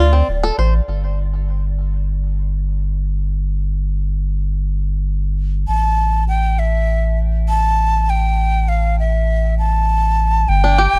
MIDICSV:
0, 0, Header, 1, 4, 480
1, 0, Start_track
1, 0, Tempo, 600000
1, 708, Time_signature, 4, 2, 24, 8
1, 8794, End_track
2, 0, Start_track
2, 0, Title_t, "Flute"
2, 0, Program_c, 0, 73
2, 0, Note_on_c, 0, 74, 88
2, 440, Note_off_c, 0, 74, 0
2, 4542, Note_on_c, 0, 81, 88
2, 4993, Note_off_c, 0, 81, 0
2, 5028, Note_on_c, 0, 79, 80
2, 5271, Note_on_c, 0, 76, 71
2, 5283, Note_off_c, 0, 79, 0
2, 5749, Note_off_c, 0, 76, 0
2, 5988, Note_on_c, 0, 81, 101
2, 6476, Note_on_c, 0, 79, 93
2, 6488, Note_off_c, 0, 81, 0
2, 6947, Note_on_c, 0, 77, 78
2, 6959, Note_off_c, 0, 79, 0
2, 7187, Note_off_c, 0, 77, 0
2, 7195, Note_on_c, 0, 76, 73
2, 7640, Note_off_c, 0, 76, 0
2, 7670, Note_on_c, 0, 81, 95
2, 8388, Note_on_c, 0, 79, 109
2, 8400, Note_off_c, 0, 81, 0
2, 8794, Note_off_c, 0, 79, 0
2, 8794, End_track
3, 0, Start_track
3, 0, Title_t, "Five-string banjo"
3, 0, Program_c, 1, 105
3, 0, Note_on_c, 1, 65, 104
3, 95, Note_off_c, 1, 65, 0
3, 102, Note_on_c, 1, 60, 73
3, 213, Note_off_c, 1, 60, 0
3, 348, Note_on_c, 1, 69, 96
3, 456, Note_off_c, 1, 69, 0
3, 469, Note_on_c, 1, 72, 69
3, 583, Note_off_c, 1, 72, 0
3, 8511, Note_on_c, 1, 62, 78
3, 8617, Note_off_c, 1, 62, 0
3, 8627, Note_on_c, 1, 67, 94
3, 8794, Note_off_c, 1, 67, 0
3, 8794, End_track
4, 0, Start_track
4, 0, Title_t, "Sub bass"
4, 0, Program_c, 2, 38
4, 0, Note_on_c, 2, 38, 96
4, 178, Note_off_c, 2, 38, 0
4, 229, Note_on_c, 2, 26, 86
4, 405, Note_off_c, 2, 26, 0
4, 466, Note_on_c, 2, 33, 94
4, 644, Note_off_c, 2, 33, 0
4, 705, Note_on_c, 2, 31, 79
4, 4523, Note_off_c, 2, 31, 0
4, 4548, Note_on_c, 2, 33, 75
4, 8364, Note_off_c, 2, 33, 0
4, 8388, Note_on_c, 2, 31, 99
4, 8697, Note_off_c, 2, 31, 0
4, 8748, Note_on_c, 2, 26, 80
4, 8794, Note_off_c, 2, 26, 0
4, 8794, End_track
0, 0, End_of_file